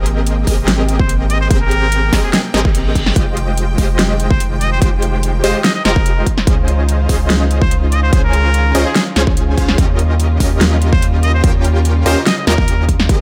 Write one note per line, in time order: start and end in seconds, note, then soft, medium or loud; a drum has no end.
0.00 0.45 G#1 medium
0.00 3.13 C3 medium
0.00 3.13 A#3 medium
0.00 0.45 C4 medium
0.00 0.45 G4 medium
0.00 0.45 G#4 medium
0.00 0.45 A#4 medium
0.00 0.45 D#5 medium
0.00 6.23 G5 medium
0.06 closed hi-hat medium
0.27 closed hi-hat medium
0.47 1.49 G#1 loud
0.47 1.48 C4 loud
0.47 1.48 G4 medium
0.47 1.48 G#4 medium
0.47 1.48 A#4 medium
0.47 1.48 D#5 loud
0.47 kick medium
0.47 open hi-hat loud
0.68 snare loud
0.68 closed hi-hat medium
0.89 closed hi-hat medium
0.99 1.12 C5 medium
0.99 kick loud
1.09 closed hi-hat medium
1.30 1.39 D#5 medium
1.30 closed hi-hat medium
1.41 1.47 C5 medium
1.51 2.11 G#1 loud
1.51 2.10 C4 medium
1.51 2.10 G4 medium
1.51 2.10 G#4 medium
1.51 2.10 A#4 medium
1.51 1.58 C5 medium
1.51 2.10 G5 medium
1.51 kick loud
1.51 closed hi-hat medium
1.61 2.19 A#4 loud
1.71 closed hi-hat medium
1.92 closed hi-hat medium
2.13 2.23 G#1 loud
2.13 2.25 C4 medium
2.13 2.25 G4 medium
2.13 2.25 G#4 medium
2.13 2.25 A#4 medium
2.13 2.25 D#5 medium
2.13 kick medium
2.13 snare medium
2.13 open hi-hat loud
2.24 2.30 G#4 medium
2.33 2.40 G#4 medium
2.33 snare loud
2.33 closed hi-hat medium
2.33 reverse cymbal medium
2.54 3.14 G#1 loud
2.54 3.14 C4 loud
2.54 3.14 G4 medium
2.54 3.14 G#4 medium
2.54 3.14 A#4 medium
2.54 3.14 D#5 loud
2.54 snare medium
2.54 closed hi-hat medium
2.65 kick loud
2.75 closed hi-hat medium
2.95 kick medium
2.95 closed hi-hat medium
3.06 snare medium
3.16 3.76 F1 loud
3.16 9.74 D#3 medium
3.16 3.76 G#3 medium
3.16 6.23 G#3 medium
3.16 3.76 F4 medium
3.16 3.76 G4 medium
3.16 3.76 C5 medium
3.16 3.76 D#5 medium
3.16 kick loud
3.16 closed hi-hat medium
3.37 closed hi-hat medium
3.57 closed hi-hat medium
3.78 4.80 F1 loud
3.78 4.79 G#3 loud
3.78 4.79 F4 medium
3.78 4.79 G4 medium
3.78 4.79 C5 medium
3.78 4.79 D#5 loud
3.78 kick medium
3.78 open hi-hat medium
3.99 snare loud
3.99 closed hi-hat medium
4.20 closed hi-hat medium
4.30 4.43 C5 medium
4.30 kick loud
4.40 closed hi-hat medium
4.61 4.70 D#5 medium
4.61 closed hi-hat medium
4.72 4.78 C5 medium
4.82 5.42 F1 loud
4.82 5.41 G#3 medium
4.82 5.41 F4 medium
4.82 5.41 G4 medium
4.82 5.41 C5 medium
4.82 4.89 C5 medium
4.82 5.41 G5 medium
4.82 kick loud
4.82 closed hi-hat medium
5.02 closed hi-hat medium
5.23 closed hi-hat medium
5.43 5.54 F1 loud
5.43 5.56 G#3 medium
5.43 5.56 F4 medium
5.43 5.56 G4 medium
5.43 5.57 C5 medium
5.43 5.56 C5 medium
5.43 5.56 D#5 medium
5.43 open hi-hat medium
5.64 5.71 D#5 medium
5.64 snare loud
5.64 closed hi-hat medium
5.75 5.82 D#5 medium
5.85 6.23 F1 loud
5.85 6.25 G#3 medium
5.85 6.25 F4 medium
5.85 6.25 G4 medium
5.85 6.26 A#4 loud
5.85 6.25 C5 medium
5.85 6.25 D#5 loud
5.85 snare medium
5.85 closed hi-hat medium
5.96 kick loud
6.06 closed hi-hat medium
6.26 9.75 F4 medium
6.26 7.90 C5 medium
6.26 kick medium
6.26 closed hi-hat medium
6.38 snare medium
6.47 7.07 C#2 loud
6.47 7.07 C#4 medium
6.47 7.07 F4 medium
6.47 7.07 G#4 medium
6.47 7.07 C5 medium
6.47 7.07 D#5 medium
6.47 kick loud
6.47 closed hi-hat medium
6.68 closed hi-hat medium
6.89 closed hi-hat medium
7.09 8.11 C#2 loud
7.09 8.10 C#4 loud
7.09 8.10 F4 medium
7.09 8.10 G#4 medium
7.09 8.10 C5 medium
7.09 8.10 D#5 loud
7.09 kick medium
7.09 open hi-hat medium
7.30 snare loud
7.30 closed hi-hat medium
7.51 closed hi-hat medium
7.62 7.75 C5 medium
7.62 kick loud
7.71 closed hi-hat medium
7.92 9.76 C#4 medium
7.92 8.01 D#5 medium
7.92 closed hi-hat medium
8.03 8.09 C5 medium
8.13 8.73 C#2 loud
8.13 8.72 C#4 medium
8.13 8.72 F4 medium
8.13 8.72 G#4 medium
8.13 8.72 C5 medium
8.13 8.20 C5 medium
8.13 8.72 G#5 medium
8.13 kick loud
8.13 closed hi-hat medium
8.24 8.81 A#4 loud
8.33 closed hi-hat medium
8.54 closed hi-hat medium
8.75 8.85 C#2 loud
8.75 8.87 C#4 medium
8.75 8.87 F4 medium
8.75 8.87 G#4 medium
8.75 8.87 C5 medium
8.75 8.87 D#5 loud
8.75 open hi-hat medium
8.86 8.92 G#4 medium
8.96 9.03 G#4 medium
8.96 snare loud
8.96 closed hi-hat medium
9.16 9.56 C#2 loud
9.16 9.55 C#4 medium
9.16 9.55 F4 medium
9.16 9.55 G#4 medium
9.16 9.55 C5 medium
9.16 9.55 G#5 medium
9.16 snare medium
9.16 closed hi-hat medium
9.27 kick loud
9.37 closed hi-hat medium
9.57 9.76 C#2 loud
9.57 9.76 C#4 medium
9.57 9.76 F4 medium
9.57 9.76 G#4 medium
9.57 9.76 C5 medium
9.57 9.76 F5 medium
9.57 kick medium
9.57 closed hi-hat medium
9.69 snare medium
9.78 10.38 D#2 medium
9.78 13.06 C#3 medium
9.78 13.06 G3 medium
9.78 10.38 C#4 medium
9.78 13.06 F4 medium
9.78 10.38 F4 medium
9.78 10.38 G4 medium
9.78 10.38 A#4 medium
9.78 10.38 D#5 medium
9.78 kick loud
9.78 closed hi-hat medium
9.99 closed hi-hat medium
10.20 closed hi-hat medium
10.40 11.42 D#2 loud
10.40 11.41 C#4 loud
10.40 11.41 F4 medium
10.40 11.41 G4 medium
10.40 11.41 A#4 medium
10.40 11.41 D#5 loud
10.40 kick medium
10.40 open hi-hat medium
10.61 snare loud
10.61 closed hi-hat medium
10.82 closed hi-hat medium
10.93 11.06 C5 medium
10.93 kick loud
11.02 closed hi-hat medium
11.23 11.32 D#5 medium
11.23 closed hi-hat medium
11.34 11.40 C5 medium
11.44 12.04 D#2 loud
11.44 12.03 C#4 medium
11.44 12.03 F4 medium
11.44 12.03 G4 medium
11.44 12.03 A#4 medium
11.44 11.51 C5 medium
11.44 12.03 G5 medium
11.44 kick loud
11.44 closed hi-hat medium
11.64 closed hi-hat medium
11.85 closed hi-hat medium
12.06 12.16 D#2 loud
12.06 12.18 C#4 medium
12.06 12.18 F4 medium
12.06 12.18 G4 medium
12.06 12.18 A#4 medium
12.06 12.20 C5 medium
12.06 12.18 D#5 loud
12.06 open hi-hat loud
12.27 12.34 D#5 medium
12.27 snare loud
12.27 closed hi-hat medium
12.38 12.44 D#5 medium
12.47 13.11 D#2 loud
12.47 13.07 C#4 medium
12.47 13.07 F4 medium
12.47 13.07 G4 medium
12.47 13.07 A#4 medium
12.47 12.89 A#4 loud
12.47 13.07 D#5 loud
12.47 snare medium
12.47 closed hi-hat medium
12.58 kick loud
12.68 closed hi-hat medium
12.89 kick medium
12.89 closed hi-hat medium
13.00 snare medium
13.09 13.21 G#1 loud
13.09 13.21 C3 medium
13.09 13.21 A#3 medium
13.09 13.21 C4 medium
13.09 13.21 G4 medium
13.09 13.21 G#4 medium
13.09 13.21 A#4 medium
13.09 13.21 D#5 medium
13.09 13.21 G5 medium
13.09 kick loud
13.09 closed hi-hat medium